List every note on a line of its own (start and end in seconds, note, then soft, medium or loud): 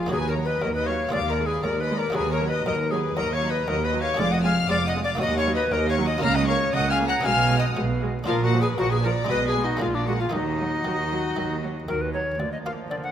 0.00 0.10 F4 medium
0.00 0.11 G#4 medium
0.00 0.12 F5 medium
0.06 1.08 A#3 medium
0.06 1.09 D#4 medium
0.06 1.09 F#4 medium
0.11 0.53 D#2 medium
0.11 0.57 D#2 medium
0.11 0.20 F#3 medium
0.11 0.17 G#4 loud
0.11 0.29 B4 medium
0.11 0.28 G#5 loud
0.28 0.34 A#4 medium
0.28 0.46 C#5 medium
0.28 0.46 A#5 medium
0.37 0.45 F#3 medium
0.45 0.63 B4 medium
0.45 0.61 D#5 medium
0.45 0.63 B5 medium
0.62 1.04 D#2 medium
0.62 1.07 D#2 medium
0.62 1.08 D#2 medium
0.62 0.71 F#3 medium
0.62 0.74 A#4 medium
0.62 0.67 D#5 medium
0.62 0.75 A#5 loud
0.75 0.88 B4 medium
0.75 0.88 D#5 medium
0.75 0.87 B5 medium
0.86 0.96 F#3 medium
0.86 1.12 C#5 medium
0.86 1.11 F5 medium
0.86 1.13 C#6 medium
1.09 1.58 D#2 medium
1.09 1.60 A#3 medium
1.09 2.10 F4 medium
1.09 2.11 G#4 medium
1.09 1.18 D5 medium
1.09 1.29 F5 medium
1.09 1.29 D6 loud
1.13 1.55 D#2 medium
1.13 1.59 D#2 medium
1.13 1.21 G#3 medium
1.29 1.48 A#4 medium
1.29 1.47 D5 medium
1.29 1.47 A#5 loud
1.39 1.47 G#3 medium
1.46 1.65 G#4 medium
1.46 1.64 B4 medium
1.46 1.63 G#5 medium
1.63 2.06 D#2 medium
1.63 2.09 D#2 medium
1.63 1.73 G#3 medium
1.63 1.82 A#4 loud
1.63 1.81 D5 medium
1.63 1.70 A#5 loud
1.80 1.97 B4 medium
1.80 1.98 D#5 medium
1.80 1.97 B5 medium
1.90 1.98 G#3 medium
1.97 2.16 A#4 medium
1.97 2.15 D5 medium
1.97 2.15 A#5 medium
2.10 4.12 A#3 medium
2.10 4.13 D#4 medium
2.10 4.14 F#4 medium
2.10 2.31 G#5 loud
2.14 2.60 D#2 medium
2.14 2.57 D#2 medium
2.14 2.60 D#2 medium
2.14 2.24 F#3 medium
2.14 2.31 G#4 medium
2.14 2.32 B4 medium
2.31 2.48 A#4 medium
2.31 2.49 C#5 medium
2.31 2.49 A#5 loud
2.40 2.48 F#3 medium
2.48 2.65 B4 medium
2.48 2.65 D#5 medium
2.48 2.65 B5 loud
2.64 3.11 D#2 medium
2.64 3.08 D#2 medium
2.64 2.74 F#3 medium
2.64 2.93 A#4 medium
2.64 2.74 D#5 medium
2.64 2.90 A#5 loud
2.91 2.99 F#3 medium
2.91 3.16 G#4 medium
2.91 3.16 B4 medium
2.91 2.99 G#5 medium
3.16 3.61 D#2 medium
3.16 3.59 D#2 medium
3.16 3.62 D#2 medium
3.16 3.25 F#3 medium
3.16 3.34 A#4 loud
3.16 3.34 D#5 medium
3.16 3.33 A#5 loud
3.33 3.52 C#5 medium
3.33 3.51 F5 medium
3.33 3.50 C#6 loud
3.42 3.50 F#3 medium
3.50 3.69 B4 medium
3.50 3.66 D#5 medium
3.50 3.67 B5 medium
3.66 4.13 D#2 loud
3.66 4.10 D#2 medium
3.66 4.13 D#2 medium
3.66 3.76 F#3 medium
3.66 3.86 A#4 loud
3.66 3.84 D#5 medium
3.66 3.84 A#5 loud
3.84 4.03 B4 medium
3.84 4.02 D#5 medium
3.84 3.91 B5 medium
3.94 4.02 F#3 medium
4.01 4.20 C#5 medium
4.01 4.17 F5 medium
4.01 4.18 C#6 loud
4.14 5.14 A#3 medium
4.14 5.16 D4 medium
4.14 5.17 G#4 medium
4.14 4.31 F5 loud
4.14 4.31 D6 loud
4.19 4.63 F1 medium
4.19 4.63 F2 loud
4.19 4.60 F2 medium
4.19 4.27 G#3 medium
4.19 4.32 D5 loud
4.31 4.38 D#5 medium
4.31 4.44 F#5 medium
4.31 4.44 D#6 loud
4.44 4.52 G#3 medium
4.44 4.69 F5 loud
4.44 4.52 G#5 medium
4.44 4.69 F6 loud
4.69 5.14 F1 medium
4.69 5.14 F2 medium
4.69 5.11 F2 medium
4.69 4.78 G#3 medium
4.69 4.76 D5 loud
4.69 4.86 F5 loud
4.69 4.86 D6 loud
4.86 4.93 D#5 medium
4.86 5.04 F#5 loud
4.86 5.03 D#6 loud
4.94 5.02 G#3 medium
5.04 5.10 D5 medium
5.04 5.20 F5 medium
5.04 5.21 D6 loud
5.15 6.17 A#3 medium
5.15 6.18 D#4 medium
5.15 6.18 F#4 medium
5.20 5.62 D#2 medium
5.20 5.65 D#2 loud
5.20 5.66 D#2 loud
5.20 5.28 F#3 medium
5.20 5.37 D#5 loud
5.20 5.37 F#5 loud
5.20 5.37 D#6 loud
5.38 5.54 C#5 medium
5.38 5.55 F5 loud
5.38 5.54 C#6 loud
5.46 5.54 F#3 medium
5.55 5.74 B4 medium
5.55 5.71 D#5 medium
5.55 5.62 B5 loud
5.71 6.16 D#2 medium
5.71 6.16 D#2 loud
5.71 6.13 D#2 medium
5.71 5.80 F#3 medium
5.71 5.88 A#4 loud
5.71 5.89 D#5 loud
5.71 5.79 A#5 loud
5.88 5.95 C#5 loud
5.88 6.05 F5 loud
5.88 6.05 C#6 loud
5.98 6.06 F#3 medium
6.05 6.23 D#5 medium
6.05 6.22 F#5 medium
6.05 6.23 D#6 loud
6.18 6.67 C#3 loud
6.18 7.20 A#3 medium
6.18 7.20 F4 medium
6.18 7.21 A#4 medium
6.18 6.35 F6 loud
6.23 6.68 C#2 loud
6.23 6.65 C#3 medium
6.23 6.31 A#3 medium
6.23 6.37 F5 loud
6.23 6.35 A#5 loud
6.35 6.48 D#5 loud
6.35 6.48 F#5 medium
6.35 6.48 D#6 loud
6.47 6.57 A#3 medium
6.47 6.75 C#5 loud
6.47 6.56 F5 loud
6.47 6.73 C#6 loud
6.73 7.19 C#2 medium
6.73 7.19 C#3 medium
6.73 7.16 C#3 medium
6.73 6.82 A#3 medium
6.73 6.90 D#5 loud
6.73 6.90 F#5 loud
6.73 6.90 D#6 loud
6.90 7.07 F5 loud
6.90 7.07 G#5 loud
6.90 6.98 F6 loud
7.00 7.08 A#3 medium
7.07 7.27 F#5 loud
7.07 7.25 A#5 loud
7.07 7.15 F#6 loud
7.21 7.70 B1 loud
7.21 7.70 B2 loud
7.21 8.22 B3 medium
7.21 8.23 D#4 medium
7.21 8.24 G#4 medium
7.21 7.58 G#5 loud
7.21 7.58 F6 loud
7.25 7.67 B2 medium
7.25 7.33 G#3 medium
7.25 7.58 F5 loud
7.50 7.58 G#3 medium
7.58 7.65 D#5 medium
7.58 7.76 F#5 loud
7.58 7.76 D#6 loud
7.76 8.21 B1 medium
7.76 8.21 B2 medium
7.76 8.18 B2 medium
7.76 7.84 G#3 medium
8.02 8.10 G#3 medium
8.24 8.72 A#1 loud
8.24 8.69 A#2 medium
8.24 8.72 A#2 loud
8.24 8.36 F3 medium
8.24 9.25 D4 medium
8.24 9.26 F4 medium
8.24 8.45 F4 loud
8.24 8.42 A#4 loud
8.24 8.34 F5 loud
8.44 8.60 F#4 medium
8.44 8.51 A#4 loud
8.44 8.61 F#5 loud
8.54 8.62 F3 medium
8.60 8.67 G#4 loud
8.60 8.77 B4 medium
8.60 8.68 G#5 loud
8.77 9.24 A#1 medium
8.77 9.20 A#2 medium
8.77 9.24 A#2 medium
8.77 8.87 F3 medium
8.77 8.91 F#4 medium
8.77 8.91 A#4 loud
8.77 8.92 F#5 loud
8.90 8.97 G#4 medium
8.90 9.03 B4 loud
8.90 9.04 G#5 loud
9.03 9.12 F3 medium
9.03 9.10 A#4 medium
9.03 9.29 D5 loud
9.03 9.30 A#5 loud
9.25 9.76 G#3 medium
9.25 9.78 D#4 medium
9.29 9.75 B1 medium
9.29 9.72 B2 medium
9.29 9.75 B2 medium
9.29 9.39 G#3 medium
9.29 9.47 B4 loud
9.29 9.46 D#5 loud
9.29 9.37 B5 loud
9.46 9.66 G#4 medium
9.46 9.53 B4 medium
9.46 9.64 G#5 loud
9.56 9.64 G#3 medium
9.63 9.83 D#4 medium
9.63 9.81 F#4 medium
9.63 9.81 D#5 medium
9.77 10.29 G#3 medium
9.77 10.28 A#3 medium
9.77 10.31 D4 medium
9.77 9.94 G#4 medium
9.77 9.86 F5 loud
9.81 10.27 A#1 medium
9.81 10.27 A#2 medium
9.81 10.24 A#2 medium
9.81 9.90 G#3 medium
9.81 9.96 F4 medium
9.94 10.06 D4 medium
9.94 10.07 F4 medium
9.94 10.07 D5 medium
10.07 10.16 G#3 medium
10.07 10.13 F#4 medium
10.07 10.20 A#4 medium
10.07 10.20 F#5 loud
10.19 10.34 F4 medium
10.19 10.32 G#4 medium
10.19 10.33 F5 medium
10.30 10.79 D#2 medium
10.30 10.75 D#3 medium
10.30 10.79 D#3 medium
10.30 12.34 A#3 medium
10.30 12.35 D#4 medium
10.30 11.57 D#4 medium
10.30 12.14 F#4 medium
10.30 12.14 D#5 loud
10.34 10.42 F#3 medium
10.61 10.69 F#3 medium
10.84 11.31 D#2 medium
10.84 11.30 D#3 medium
10.84 11.27 D#3 medium
10.84 10.94 F#3 medium
11.11 11.19 F#3 medium
11.36 11.82 D#2 medium
11.36 11.82 D#3 medium
11.36 11.79 D#3 medium
11.36 11.45 F#3 medium
11.63 11.71 F#3 medium
11.88 12.34 D#2 medium
11.88 12.34 D#3 medium
11.88 12.31 D#3 medium
11.88 11.97 F#3 medium
11.88 12.03 A#4 medium
12.01 12.12 B4 medium
12.13 12.23 F#3 medium
12.13 12.41 C#5 medium
12.39 12.88 D2 soft
12.39 12.87 D2 soft
12.39 13.12 F3 soft
12.39 13.12 A#3 soft
12.39 12.88 F4 soft
12.39 12.51 D5 medium
12.52 12.58 D#5 soft
12.65 13.03 A#3 soft
12.65 13.03 F4 soft
12.65 12.71 F5 medium
12.90 13.12 D3 soft
12.90 13.12 A#4 soft
12.90 12.96 D5 medium
13.03 13.12 F#5 medium